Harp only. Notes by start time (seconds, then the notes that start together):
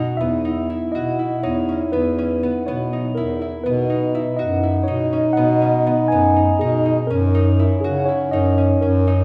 Already playing: B3 C#4 D#4
0.21 B3
0.45 D#4
0.70 E4
0.95 F#4
1.19 E4
1.43 D#4
1.69 C#4
1.93 B3
2.18 C#4
2.43 B3
2.68 B3
2.93 D#4
3.17 E4
3.42 E4
3.66 B3
3.90 D#4
4.15 E4
4.39 F#4
4.63 E4
4.88 D#4
5.13 C#4
5.37 B3
5.62 C#4
5.87 B3
6.12 B3
6.36 D#4
6.61 D#4
6.85 D#4
7.10 C#4
7.35 D#4
7.59 E4
7.84 F#4
8.09 E4
8.33 D#4
8.58 C#4
8.82 C#4
9.07 D#4